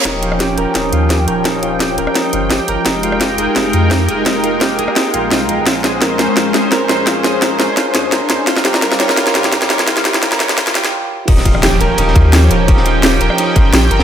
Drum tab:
CC |----------------|----------------|----------------|----------------|
RD |----------------|----------------|----------------|----------------|
HH |x-x-x-x-x-x-x-x-|x-x-x-x-x-x-x-x-|x-x-x-x-x-x-x-x-|x-x-x-x-x-x-x-x-|
SD |o--ro---o---o---|o---o--ro---o---|o--ro---o---o---|o---o--ro---o---|
BD |o---o---o---o---|o---o---o---o---|o---o---o---o---|o---o---o---o---|

CC |----------------|----------------|----------------|----------------|
RD |----------------|----------------|----------------|----------------|
HH |x-x-x-x-x-x-x-x-|x-x-x-x-x-x-x-x-|x-x-x-x-x-x-x-x-|x-x-x-x-x-x-----|
SD |o-o-o-o-o-o-o-o-|o-o-o-o-o-o-o-o-|oooooooooooooooo|oooooooooooo----|
BD |o---o---o---o---|o---o---o---o---|o---o---o---o---|o---o---o-------|

CC |x---------------|----------------|
RD |x-x-xxx-x-x-x-x-|x-x-xxx-x-x-xxxx|
HH |x-x-x-x-x-x-x-x-|x-x-x-x-x-x-x-x-|
SD |-o-ro----o--o---|-o--o--r----o--o|
BD |o-o-------o-----|o---------o-----|